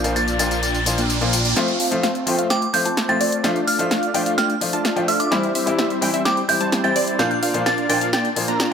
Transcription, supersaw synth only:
Already playing: A#3 D4 F4 D5 F5
0.16 A#3 D4 F4 D5 F5
0.39 A#3 D4 F4 D5 G5
0.51 A#3 D4 F4 D5 F5
0.63 A#3 D4 F4 D5 G5
0.98 A#3 D4 F4 D5 G5
1.22 A#3 D4 F4 D5 A#5
1.33 A#3 D4 F4 D5 G5
1.45 A#3 D4 F4 D5 G5
1.57 A3 C4 F4 C5 F5
1.80 A3 C4 F4 C5 F5
2.03 A3 C4 F4 C5 F5
2.27 A3 C4 F4 C5 G5
2.39 A3 C4 F4 C5 F5
2.50 A3 C4 F4 C5 G5
2.86 A3 C4 F4 C5 A5
3.09 A3 C4 F4 C5 G5
3.21 A3 C4 F4 C5 D5
3.44 A3 D4 F4 D5 F5
3.68 A3 D4 F4 D5 F5
3.91 A3 D4 F4 D5 F5
4.14 A3 D4 F4 D5 G5
4.26 A3 D4 F4 D5 F5
4.38 A3 D4 F4 D5
4.73 A3 D4 F4 D5 A5
4.97 A3 D4 F4 D5 G5
5.08 A3 D4 F4 D5 E5
5.32 G3 C4 E4 C5 E5
5.55 G3 C4 E4 C5 E5
5.79 G3 C4 E4 C5 E5
6.02 G3 C4 E4 C5 G5
6.14 G3 C4 E4 C5 E5
6.25 G3 C4 E4 C5 G5
6.61 G3 C4 E4 C5 A5
6.84 G3 C4 E4 C5 G5
6.96 G3 C4 E4 C5 D5
7.19 A#3 D4 F4 D5 F5
7.43 A#3 D4 F4 D5 F5
7.66 A#3 D4 F4 D5 F5
7.89 A#3 D4 F4 D5 G5
8.01 A#3 D4 F4 D5 F5
8.13 A#3 D4 F4 D5 G5
8.48 A#3 D4 F4 D5 A#5

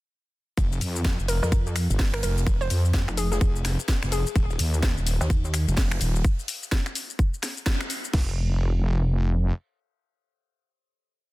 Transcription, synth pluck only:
1.28 A#4
1.43 A#4
2.14 A#4
2.23 A#4
2.61 C5
3.17 G#4
3.32 G#4
4.12 G#4

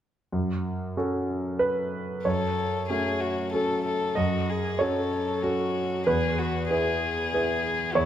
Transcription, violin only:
2.24 A4
2.90 G#4
3.20 F#4
3.52 A4
3.85 A4
4.17 F#4
4.50 G#4
4.81 A4
5.43 F#4
6.07 G#4
6.39 F#4
6.70 G#4
7.94 E4

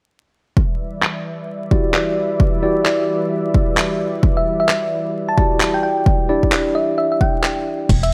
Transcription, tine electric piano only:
1.71 E4 F#4 G4 D5
2.63 E4 F#4 G4 D5
5.38 E4 F#4 G4 D5
6.29 D4 E4 G4 D5

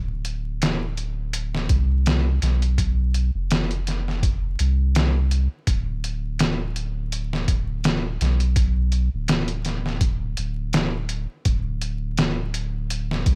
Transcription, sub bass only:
Already playing: D1
1.70 C2
2.42 B1
3.34 F1
4.60 C2
5.68 D1
7.48 D1
8.21 B1
9.13 D1
10.38 D1
11.46 D1
13.26 C2

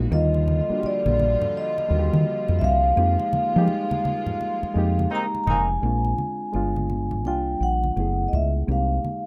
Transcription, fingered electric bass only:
0.11 D#2
0.70 muted fingered electric bass stroke
0.83 muted fingered electric bass stroke
1.06 A#1
1.90 D#2
2.13 D#3
2.49 F2
2.62 C2
2.97 F2
3.33 muted fingered electric bass stroke
3.56 F3
4.63 muted fingered electric bass stroke
4.75 F2
5.47 F1
5.83 A#1
6.54 G1
7.25 C2
7.60 A#1
7.96 F#1
8.33 C#2
8.68 C2

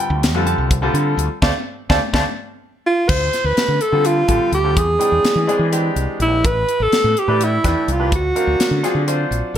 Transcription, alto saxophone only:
2.87 F4
3.09 C5
3.46 B4
3.82 A4
4.06 F4
4.55 G4
4.78 G#4
6.22 E4
6.46 B4
6.83 A4
7.19 G4
7.44 E4
7.68 E4
7.92 F4
8.15 F#4

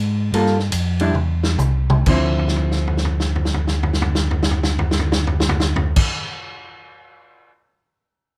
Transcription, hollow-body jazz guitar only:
0.34 G3 A#3 F4 A4
1.01 G3 D4 E4
2.08 D3 F3 C4 E4

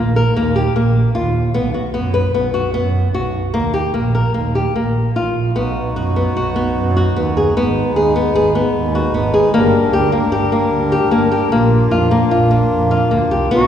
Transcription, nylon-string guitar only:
Already playing: A#3
0.16 A#4
0.36 A#3
0.56 G4
0.76 A#3
1.15 F4
1.54 B3
1.74 F#4
1.94 B3
2.14 B4
2.34 B3
2.54 F#4
2.74 B3
3.14 F#4
3.54 A#3
3.74 G4
3.94 A#3
4.15 A#4
4.34 A#3
4.55 G4
4.76 A#3
5.16 F4
5.56 B3
5.96 F#4
6.16 B3
6.37 F#4
6.56 B3
6.96 F#4
7.16 B3
7.37 G#4
7.57 B3
7.96 G#4
8.16 B3
8.35 G#4
8.55 B3
8.95 F#4
9.14 B3
9.34 G#4
9.54 A#3
9.93 G4
10.12 A#3
10.32 G4
10.52 A#3
10.92 G4
11.11 A#3
11.32 G4
11.52 A#3
11.91 F4
12.11 A#3
12.31 F4
12.51 A#3
12.91 F4
13.11 A#3
13.31 G4
13.51 B3

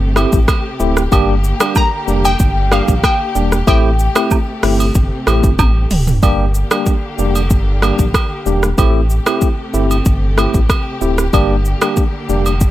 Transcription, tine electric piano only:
0.16 A3 C4 E4 G4
0.80 A3 C4 E4 G4
1.12 G3 A#3 D4 G4
1.60 G3 A#3 D4 G4
2.07 G3 A#3 D4 G4
2.71 G3 A#3 D4 G4
3.35 G3 A#3 D4 G4
3.67 A3 C4 E4 G4
4.15 A3 C4 E4 G4
4.63 A3 C4 E4 G4
5.27 A3 C4 E4 G4
6.23 G3 A#3 D4 G4
6.71 G3 A#3 D4 G4
7.18 G3 A#3 D4 G4
7.82 G3 A#3 D4 G4
8.46 G3 A#3 D4 G4
8.78 A3 C4 E4 G4
9.26 A3 C4 E4 G4
9.74 A3 C4 E4 G4
10.37 A3 C4 E4 G4
11.01 A3 C4 E4 G4
11.33 G3 A#3 D4 G4
11.82 G3 A#3 D4 G4
12.29 G3 A#3 D4 G4

